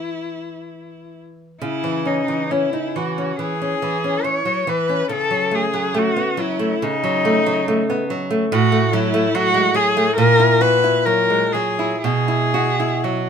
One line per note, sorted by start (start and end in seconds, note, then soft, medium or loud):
0.00 1.57 E3 soft
0.00 1.57 G#3 soft
0.00 1.58 B3 soft
0.00 1.18 E4 medium
1.61 3.35 C#3 medium
1.61 2.08 E4 medium
1.84 2.20 E3 soft
2.05 2.42 C#4 soft
2.05 2.53 D#4 medium
2.28 2.64 E3 soft
2.51 2.73 C#4 medium
2.51 2.97 E4 medium
2.73 2.96 D#4 soft
2.96 3.31 E3 medium
2.96 3.39 F#4 medium
3.18 3.53 C#4 soft
3.39 3.74 E3 soft
3.39 4.27 G#4 medium
3.62 3.95 C#4 soft
3.82 4.16 E3 medium
4.04 4.38 C#4 soft
4.24 4.45 E3 soft
4.24 4.71 C#5 medium
4.45 4.67 F#3 soft
4.67 5.02 E3 medium
4.67 5.11 B4 medium
4.89 5.11 C#4 soft
5.09 6.78 C#3 medium
5.09 5.56 A4 medium
5.31 5.66 F#3 soft
5.51 5.87 A3 medium
5.51 6.00 G#4 medium
5.74 6.09 F#3 medium
5.94 6.30 A3 medium
5.94 6.43 F#4 medium
6.16 6.39 B3 medium
6.37 6.73 F#3 medium
6.37 6.85 E4 medium
6.59 6.95 A3 medium
6.82 8.49 C#3 medium
6.82 8.12 D#4 loud
7.04 7.38 F#3 medium
7.25 7.60 A3 medium
7.46 7.81 F#3 medium
7.68 8.03 A3 medium
7.90 8.11 B3 medium
8.10 8.44 F#3 medium
8.30 8.52 A3 medium
8.52 10.13 A2 medium
8.52 8.95 F#4 loud
8.72 9.06 A3 medium
8.93 9.26 F#3 medium
8.93 9.36 E4 loud
9.14 9.47 A3 medium
9.35 9.68 F#3 medium
9.35 9.77 F#4 loud
9.54 9.76 G#3 medium
9.74 10.09 F#3 medium
9.74 10.17 G#4 loud
9.97 10.18 A3 medium
10.17 12.00 A#2 medium
10.17 10.63 A#4 loud
10.39 10.75 E4 medium
10.61 10.97 F#4 medium
10.61 11.07 B4 loud
10.84 11.21 E4 medium
11.05 11.44 F#3 medium
11.05 11.54 A#4 loud
11.30 11.54 G#3 medium
11.52 11.94 F#3 medium
11.52 12.01 G#4 medium
11.79 12.04 E4 soft
12.02 13.29 B2 medium
12.02 13.05 G#4 loud
12.28 12.69 E4 medium
12.54 12.94 F#4 medium
12.80 13.20 E4 medium
13.04 13.29 F#3 medium
13.04 13.29 F#4 medium